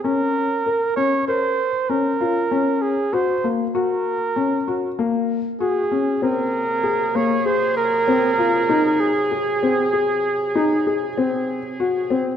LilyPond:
<<
  \new Staff \with { instrumentName = "Flugelhorn" } { \time 5/4 \key bes \minor \tempo 4 = 97 bes'4. des''8 c''4 bes'4. aes'8 | c''8 r8 bes'2 r4 aes'4 | bes'4. des''8 c''8 bes'2 aes'8~ | aes'1 r4 | }
  \new Staff \with { instrumentName = "Felt piano" } { \time 5/4 \key bes \minor des'4 bes'8 des'8 bes'4 des'8 f'8 des'4 | ges'8 bes8 ges'4 des'8 ges'8 bes4 ges'8 des'8 | c'4 aes'8 bes8 aes'4 c'8 f'8 ees'4 | aes'8 c'8 aes'4 ees'8 aes'8 c'4 ges'8 c'8 | }
  \new Staff \with { instrumentName = "Woodwind section" } { \clef bass \time 5/4 \key bes \minor << { r1 r4 | r1 r4 | <c ges aes'>1~ <c ges aes'>4~ | <c ges aes'>1~ <c ges aes'>4 | } \\ { r1 r4 | r1 r4 | bes1~ bes4 | r1 r4 | } >> }
>>